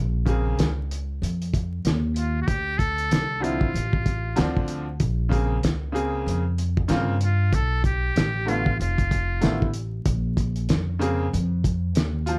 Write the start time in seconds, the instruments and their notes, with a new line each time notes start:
Already playing: upright bass A#1
0.25 upright piano C#3 A#3 C4 G#4, kick, closed hi-hat
0.59 upright bass C#2, snare, closed hi-hat
0.91 closed hi-hat
1.22 upright bass F2, closed hi-hat
1.42 closed hi-hat
1.54 kick, closed hi-hat
1.85 upright bass D#2, snare, closed hi-hat
2.16 muted trumpet F4, closed hi-hat
2.42 muted trumpet F#4
2.47 upright bass D2, muted trumpet G4, kick, closed hi-hat
2.78 muted trumpet A4, kick, closed hi-hat
2.98 closed hi-hat
3.11 upright bass C2, snare, closed hi-hat
3.40 upright piano D3 F3 C4 E4, muted trumpet F4, closed hi-hat
3.61 kick
3.74 upright bass A1, closed hi-hat
3.93 kick
4.06 kick, closed hi-hat
4.36 upright bass D2, upright piano D3 F3 C4 D4, snare, closed hi-hat
4.57 kick
4.68 closed hi-hat
5.00 upright bass A#1, kick, closed hi-hat
5.29 upright piano C#3 A#3 C4 G#4, kick, closed hi-hat
5.63 upright bass C#2, snare, closed hi-hat
5.92 upright piano C#3 A#3 C4 G#4, closed hi-hat
6.26 upright bass F2, closed hi-hat
6.58 closed hi-hat
6.77 kick
6.88 upright bass G2, upright piano C#3 A#3 C4 F4, snare, closed hi-hat
7.21 muted trumpet F4, closed hi-hat
7.53 upright bass B1, muted trumpet A4, kick, closed hi-hat
7.84 muted trumpet G4, kick, closed hi-hat
8.16 upright bass A1, snare, closed hi-hat
8.46 upright piano D3 A3 B3 F4, muted trumpet F4, closed hi-hat
8.66 kick
8.79 upright bass F1, muted trumpet F4, closed hi-hat
8.98 kick, closed hi-hat
9.11 kick, closed hi-hat
9.41 upright bass A1, upright piano D3 A3 B3 E4, snare, closed hi-hat
9.62 kick
9.74 closed hi-hat
10.06 upright bass A#1, kick, closed hi-hat
10.37 kick, closed hi-hat
10.56 closed hi-hat
10.69 upright bass F2, snare, closed hi-hat
10.99 upright piano C#3 A#3 C4 G#4, closed hi-hat
11.33 upright bass F2, closed hi-hat
11.64 kick, closed hi-hat
11.95 upright bass D#2, snare, closed hi-hat
12.26 upright piano F3 F4, closed hi-hat